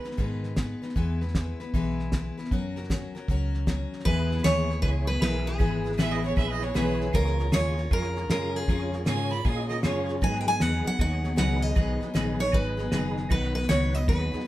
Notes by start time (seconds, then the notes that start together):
0.04 G#3 B3 D#4 B4, snare
0.11 snare
0.17 G#2 B2 D#3 G#3 B3 D#4 B4, kick, snare
0.43 snare
0.56 G#3 B3 D#4 B4, kick, snare, hi-hat pedal
0.82 G#3 B3 D#4 B4, snare
0.89 snare
0.95 E2 E3 G#3 B3 E4 B4, kick, snare
1.21 B3 E4 B4, snare
1.28 snare
1.35 G#3 B3 E4 B4, kick, snare, hi-hat pedal
1.60 B3 E4 B4, snare
1.74 B1 E3 G#3 B3 E4 B4, kick, snare
1.99 snare
2.12 G#3 B3 E4 B4, kick, snare, hi-hat pedal
2.38 B3 E4 B4, snare
2.45 snare
2.51 F#2 F#3 C#4 F#4 A#4, kick, snare
2.76 C#4 F#4 A#4, snare
2.83 snare
2.89 F#3 C#4 F#4 A#4, kick, snare, hi-hat pedal
3.15 C#4 F#4 A#4, snare
3.28 C#2 F#3 C#4 F#4 A#4, kick, snare
3.54 snare
3.67 F#3 C#4 F#4 A#4, kick, snare, hi-hat pedal
3.93 snare
4.00 snare
4.05 E2 E3 G#3 B3 E4 G#4 B4, kick, snare
4.30 B3 E4 G#4, snare
4.38 snare
4.43 D#2 E3 G#3 B3 E4 G#4 C#5, snare, hi-hat pedal
4.69 B3 E4 G#4, snare
4.82 C#2 G#3 B3 E4 G#4 B4 C#5, kick, snare
5.07 B3 E4 G#4 B4, snare
5.20 B1 E3 G#3 B3 E4 G#4 A#4 B4, snare, hi-hat pedal
5.47 G#4, snare
5.59 G#1 E3 G#3 B3 E4 G#4 B4, kick, snare
5.84 B3 E4 G#4, snare
5.92 snare
5.98 A1 E3 G#3 B3 E4 G#4 B4 E5, snare, hi-hat pedal
6.12 D#5
6.23 B3 E4 G#4 C#5, snare
6.36 A#1 G#3 B3 E4 G#4 B4 E5, kick, snare
6.51 D#5
6.61 B3 E4 G#4 C#5, snare
6.74 B1 E3 G#3 B3 E4 G#4 B4 C#5, snare, hi-hat pedal
7.01 snare
7.13 C#2 C#3 G#3 C#4 F4 G#4 A#4 C#5, kick, snare
7.27 snare
7.38 C#4 F4 A#4, snare
7.52 D#2 C#3 G#3 C#4 F4 G#4 A#4 C#5, snare, hi-hat pedal
7.77 C#4 F4 A#4, snare
7.91 F2 G#3 C#4 F4 G#4 A#4 C#5, kick, snare
8.04 snare
8.16 C#4 F4 A#4, snare
8.29 F#2 C#3 G#3 C#4 F4 G#4 A#4, snare, hi-hat pedal
8.55 G#4, snare
8.68 F2 C#3 G#3 C#4 F4 G#4 A#4 C#5, kick, snare
8.93 C#4 F4 A#4, snare
9.06 G#2 C#3 G#3 C#4 F4 G#4 A#4 C#5 G#5, snare, hi-hat pedal
9.31 C#4 F4 A#4 B5, snare
9.45 A#2 G#3 C#4 F4 G#4 A#4 D#5 G#5, kick, snare
9.69 C#4 F4 A#4 D#5, snare
9.82 F#2 C#3 G#3 C#4 F4 G#4 A#4 C#5, snare, hi-hat pedal
10.09 snare
10.21 G#2 D#3 F#3 B3 D#4 G#4 B4 G#5, kick, snare
10.41 G5
10.45 F#3 B3 D#4 G#4 G#5, snare
10.60 E2 G#2 D#3 F#3 B3 D#4 G#4 B4 F#5, snare, hi-hat pedal
10.84 F#3 B3 D#4 G#4 F#5, muted fingered electric bass stroke, snare
10.97 D#2 F#3 B3 D#4 G#4 C#5 F#5, kick, snare
11.24 F#3 B3 D#4 G#4, snare
11.36 C#2 G#2 D#3 F#3 B3 D#4 G#4 B4 F#5, snare, hi-hat pedal
11.62 D#5, snare
11.75 B1 G#2 D#3 F#3 B3 D#4 G#4 B4, kick, snare
12.01 F#3 B3 D#4 G#4, snare
12.14 A#1 G#2 D#3 F#3 B3 D#4 G#4 B4, snare, hi-hat pedal
12.39 F#3 B3 D#4 G#4 C#5, snare
12.52 G#1 F#3 B3 D#4 G#4 B4, kick, snare
12.77 F#3 B3 D#4 G#4, snare
12.91 F#1 G#2 D#3 F#3 B3 D#4 G#4 B4, snare, hi-hat pedal
13.17 snare
13.29 B1 B2 D#3 F#3 B3 D#4 F#4 B4, kick, snare
13.43 snare
13.54 F#3 B3 D#4 B4, snare
13.63 snare
13.68 C#2 B2 D#3 F#3 B3 D#4 F#4 B4 C#5, snare, hi-hat pedal
13.93 F#3 B3 D#4 B4 D#5, snare
14.06 D#2 F#3 B3 D#4 F#4 G#4 B4, kick, snare
14.32 F#3 B3 D#4 B4, muted fingered electric bass stroke, snare
14.40 snare